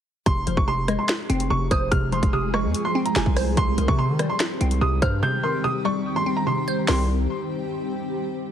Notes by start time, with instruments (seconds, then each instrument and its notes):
0.26 808-style bass F1, synth pluck C3, ambient pad F3 G#3 C4 G#4, upright piano C6, kick, closed hi-hat
0.47 808-style bass F1, synth pluck F3, closed hi-hat
0.57 808-style bass F1, upright piano C#6, kick
0.68 synth pluck C3, upright piano C6
0.88 synth pluck G#3, cross-stick, closed hi-hat
0.99 upright piano C6
1.09 finger snap, snare, closed hi-hat
1.30 808-style bass F1, synth pluck C4, closed hi-hat
1.40 closed hi-hat
1.50 808-style bass F1, synth pluck C3, upright piano C#6
1.71 808-style bass F1, synth pluck C5, upright piano D#6, kick, cross-stick, closed hi-hat
1.92 808-style bass F1, synth pluck C3, upright piano F6, kick, closed hi-hat
2.12 synth pluck F3, upright piano C6, closed hi-hat
2.23 808-style bass F1, kick, closed hi-hat
2.33 synth pluck C3, upright piano D#6
2.54 synth pluck G#3, upright piano C#6, cross-stick
2.64 808-style bass F2
2.74 closed hi-hat
2.85 upright piano C6
2.95 synth pluck C4
3.06 upright piano A#5, closed hi-hat
3.16 808-style bass F1, synth pluck C3, upright piano G#5, finger snap, snare, closed hi-hat
3.26 808-style bass C2, kick
3.36 synth pluck C5, cross-stick, open hi-hat
3.57 808-style bass C2, synth pluck C3, ambient pad D#3 G3 G4, upright piano C6, kick, closed hi-hat
3.78 808-style bass C2, synth pluck D#3, closed hi-hat
3.88 808-style bass C3, upright piano C#6, kick
3.99 synth pluck C3, upright piano C6
4.09 808-style bass D#3
4.19 synth pluck G3, cross-stick, closed hi-hat
4.30 upright piano C6
4.40 finger snap, snare, closed hi-hat
4.61 808-style bass C2, synth pluck C4, closed hi-hat
4.71 closed hi-hat
4.81 808-style bass C2, synth pluck C3, upright piano D#6
5.02 808-style bass G2, synth pluck C5, upright piano F6, kick, cross-stick, closed hi-hat
5.23 synth pluck C3, upright piano G6
5.43 synth pluck D#3, upright piano C6
5.64 synth pluck C3, upright piano D#6
5.85 synth pluck G3, upright piano C#6
6.16 upright piano C6
6.26 synth pluck C4
6.37 upright piano A#5
6.47 synth pluck C3, upright piano C6
6.68 synth pluck C5
6.88 808-style bass C2, synth pluck C3 D#3 G3 C4, upright piano C6, snare, open hi-hat